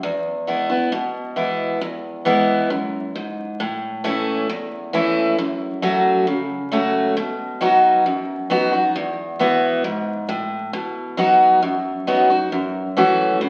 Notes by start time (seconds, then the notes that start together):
0.03 E2
0.47 E3 G#3 B3 E4
0.70 B3 E4
0.92 B2
1.36 E3 G#3 B3 E4
1.81 E2
2.25 E3 G#3 B3 E4
2.70 F#2
3.16 G#2
3.60 A2
4.04 E3 A3 C#4 E4
4.49 E2
4.93 E3 A3 C#4 E4
5.38 F#2
5.82 F#3 A3 C#4 F#4
6.27 C#3
6.72 F#3 A3 C#4 F#4
7.17 B2
7.61 F#3 B3 D#4 F#4
8.06 F#2
8.50 F#3 B3 D#4 F#4
8.73 D#4 F#4
8.96 E2
9.39 E3 B3 E4 F#4
9.84 G#2
10.29 A2
10.73 B2
11.17 F#3 B3 D#4 F#4
11.62 F#2
12.07 F#3 B3 D#4 F#4
12.30 D#4 F#4
12.52 F#2
12.97 E3 A3 C#4 F#4
13.41 C#3